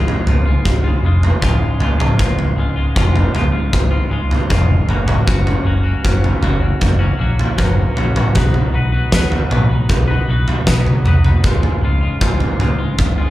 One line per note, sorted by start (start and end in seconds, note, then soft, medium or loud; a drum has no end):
0.00 0.15 C#1 medium
0.00 0.65 C#2 medium
0.00 0.25 G#2 medium
0.00 0.26 C#3 medium
0.00 0.27 G#3 medium
0.00 0.28 F4 medium
0.08 floor tom medium
0.26 0.53 C#1 medium
0.26 0.84 G#2 medium
0.26 0.47 C#3 medium
0.26 0.46 G#3 medium
0.26 0.44 F4 medium
0.26 floor tom medium
0.46 0.86 C#3 soft
0.46 0.85 G#3 medium
0.46 0.83 F4 medium
0.65 0.92 C#1 medium
0.65 kick medium
0.65 floor tom medium
0.84 1.03 C#3 medium
0.84 1.04 G#3 medium
0.84 1.05 F4 medium
1.03 1.30 F1 medium
1.03 1.41 G#2 medium
1.03 1.42 C#3 medium
1.03 1.42 G#3 medium
1.03 1.43 F4 medium
1.23 floor tom medium
1.41 1.69 C#1 medium
1.41 2.17 C#2 medium
1.41 1.78 G#2 medium
1.41 1.80 C#3 medium
1.41 1.80 G#3 medium
1.41 1.82 F4 medium
1.41 kick medium
1.41 mid tom medium
1.80 2.07 C#1 medium
1.80 2.18 G#2 medium
1.80 2.00 C#3 medium
1.80 1.99 G#3 medium
1.80 1.97 F4 medium
1.80 floor tom medium
1.98 2.19 C#3 medium
1.98 2.20 G#3 medium
1.98 2.20 F4 medium
1.98 floor tom medium
1.98 mid tom medium
2.18 2.45 C#1 medium
2.18 2.93 C#2 medium
2.18 2.55 G#2 medium
2.18 2.56 C#3 medium
2.18 2.57 G#3 medium
2.18 2.58 F4 medium
2.18 kick loud
2.18 floor tom medium
2.39 floor tom medium
2.56 2.84 C#1 medium
2.56 2.95 G#2 medium
2.56 2.78 C#3 medium
2.56 2.76 G#3 medium
2.56 2.75 F4 medium
2.76 2.96 C#3 medium
2.76 2.96 G#3 medium
2.76 2.97 F4 medium
2.94 3.22 F1 medium
2.94 3.72 C#2 medium
2.94 3.32 G#2 medium
2.94 3.33 C#3 medium
2.94 3.34 G#3 medium
2.94 3.34 F4 medium
2.94 kick loud
3.16 floor tom medium
3.33 3.60 C#1 medium
3.33 3.91 G#2 medium
3.33 3.54 C#3 medium
3.33 3.53 G#3 medium
3.33 3.51 F4 medium
3.33 floor tom medium
3.52 3.92 C#3 soft
3.52 3.91 G#3 soft
3.52 3.90 F4 medium
3.73 3.99 C#1 medium
3.73 kick medium
3.73 floor tom medium
3.91 4.10 C#3 medium
3.91 4.10 G#3 medium
3.91 4.12 F4 medium
4.09 4.37 C#1 medium
4.09 4.49 G#2 medium
4.09 4.49 C#3 medium
4.09 4.50 G#3 medium
4.09 4.51 F4 medium
4.31 floor tom medium
4.49 4.76 F1 medium
4.49 4.86 C#2 medium
4.49 4.86 G#2 medium
4.49 4.86 C#3 medium
4.49 4.87 G#3 medium
4.49 4.87 F4 medium
4.49 kick medium
4.49 mid tom medium
4.88 5.15 F#1 medium
4.88 5.24 F#2 medium
4.88 5.25 C#3 medium
4.88 5.09 F#3 medium
4.88 5.08 A#3 medium
4.88 5.08 C#4 medium
4.88 5.06 F#4 medium
4.88 floor tom medium
5.07 5.26 F#3 medium
5.07 5.26 A#3 medium
5.07 5.27 C#4 medium
5.07 5.28 F#4 medium
5.07 floor tom medium
5.07 mid tom medium
5.25 5.54 F#1 medium
5.25 6.02 F#2 medium
5.25 6.02 C#3 medium
5.25 5.63 F#3 medium
5.25 5.64 A#3 medium
5.25 5.65 C#4 medium
5.25 5.66 F#4 medium
5.25 kick loud
5.25 floor tom medium
5.47 floor tom medium
5.64 5.92 F#1 medium
5.64 5.86 F#3 medium
5.64 5.85 A#3 medium
5.64 5.84 C#4 medium
5.64 5.83 F#4 medium
5.83 6.04 F#3 medium
5.83 6.04 A#3 medium
5.83 6.05 C#4 medium
5.83 6.06 F#4 medium
6.03 6.31 F#1 medium
6.03 6.81 F#2 medium
6.03 6.81 C#3 medium
6.03 6.41 F#3 medium
6.03 6.41 A#3 medium
6.03 6.43 C#4 medium
6.03 6.44 F#4 medium
6.03 kick loud
6.24 floor tom medium
6.41 6.69 F#1 medium
6.41 6.62 F#3 medium
6.41 6.61 A#3 medium
6.41 6.61 C#4 medium
6.41 6.59 F#4 medium
6.41 floor tom medium
6.60 7.00 F#3 soft
6.60 7.00 A#3 medium
6.60 6.99 C#4 medium
6.60 6.98 F#4 medium
6.81 7.08 F#1 medium
6.81 kick medium
6.81 floor tom medium
6.99 7.16 F#3 soft
6.99 7.18 A#3 medium
6.99 7.20 C#4 medium
6.99 7.20 F#4 medium
7.18 7.46 A#1 medium
7.18 7.57 F#3 medium
7.18 7.57 A#3 medium
7.18 7.59 C#4 medium
7.18 7.59 F#4 medium
7.39 floor tom medium
7.57 7.85 F#1 medium
7.57 8.32 F#2 medium
7.57 8.33 C#3 medium
7.57 7.94 F#3 medium
7.57 7.95 A#3 medium
7.57 7.97 C#4 medium
7.57 7.97 F#4 medium
7.57 kick medium
7.57 mid tom medium
7.95 8.24 A#1 medium
7.95 8.17 F#3 medium
7.95 8.16 A#3 medium
7.95 8.15 C#4 medium
7.95 8.14 F#4 medium
7.95 floor tom medium
8.15 8.34 F#3 medium
8.15 8.34 A#3 medium
8.15 8.36 C#4 medium
8.15 8.32 F#4 medium
8.15 floor tom medium
8.15 mid tom medium
8.34 8.62 B1 medium
8.34 9.10 B2 medium
8.34 9.11 F#3 medium
8.34 8.71 B3 medium
8.34 8.72 D#4 medium
8.34 8.73 F#4 medium
8.34 8.74 B4 medium
8.34 kick medium
8.34 floor tom medium
8.54 floor tom medium
8.72 9.01 B1 medium
8.72 8.94 B3 medium
8.72 8.93 D#4 medium
8.72 8.92 F#4 medium
8.72 8.91 B4 medium
8.92 9.11 B3 medium
8.92 9.12 D#4 medium
8.92 9.13 F#4 medium
8.92 9.13 B4 medium
9.11 9.39 D#2 medium
9.11 9.89 B2 medium
9.11 9.89 F#3 medium
9.11 9.49 B3 medium
9.11 9.50 D#4 medium
9.11 9.51 F#4 medium
9.11 9.52 B4 medium
9.11 kick loud
9.11 snare medium
9.32 floor tom medium
9.50 9.78 B1 medium
9.50 9.71 B3 medium
9.50 9.70 D#4 medium
9.50 9.69 F#4 medium
9.50 9.68 B4 medium
9.50 floor tom medium
9.50 mid tom medium
9.69 10.10 B3 soft
9.69 10.09 D#4 medium
9.69 10.08 F#4 medium
9.69 10.06 B4 medium
9.89 10.16 B1 medium
9.89 kick loud
9.89 floor tom medium
10.08 10.26 B3 medium
10.08 10.28 D#4 medium
10.08 10.28 F#4 medium
10.08 10.29 B4 medium
10.28 10.55 B1 medium
10.28 10.66 B3 medium
10.28 10.67 D#4 medium
10.28 10.68 F#4 medium
10.28 10.68 B4 medium
10.48 floor tom medium
10.66 10.93 B1 medium
10.66 11.42 B2 medium
10.66 11.42 F#3 medium
10.66 11.03 B3 medium
10.66 11.05 D#4 medium
10.66 11.06 F#4 medium
10.66 11.06 B4 medium
10.66 kick medium
10.66 snare medium
10.86 high tom medium
11.04 11.31 C2 medium
11.04 11.26 B3 medium
11.04 11.25 D#4 medium
11.04 11.25 F#4 medium
11.04 11.23 B4 medium
11.04 mid tom medium
11.24 11.43 B3 medium
11.24 11.43 D#4 medium
11.24 11.42 F#4 medium
11.24 11.42 B4 medium
11.24 floor tom medium
11.44 11.71 C#1 medium
11.44 12.20 C#2 medium
11.44 11.80 G#2 medium
11.44 11.83 C#3 medium
11.44 11.84 G#3 medium
11.44 11.84 F4 medium
11.44 kick loud
11.44 floor tom medium
11.63 floor tom medium
11.82 12.09 C#1 medium
11.82 12.20 G#2 medium
11.82 12.04 C#3 medium
11.82 12.02 G#3 medium
11.82 12.01 F4 medium
12.01 12.21 C#3 medium
12.01 12.22 G#3 medium
12.01 12.22 F4 medium
12.20 12.48 C#1 medium
12.20 12.98 C#2 medium
12.20 12.58 G#2 medium
12.20 12.59 C#3 medium
12.20 12.60 G#3 medium
12.20 12.61 F4 medium
12.20 kick loud
12.40 floor tom medium
12.59 12.86 C#1 medium
12.59 13.18 G#2 medium
12.59 12.80 C#3 medium
12.59 12.79 G#3 medium
12.59 12.77 F4 medium
12.59 floor tom medium
12.79 13.20 C#3 soft
12.79 13.18 G#3 medium
12.79 13.17 F4 medium
12.98 13.25 C#1 medium
12.98 kick medium
12.98 floor tom medium
13.18 13.30 C#3 medium
13.18 13.30 G#3 medium
13.18 13.30 F4 medium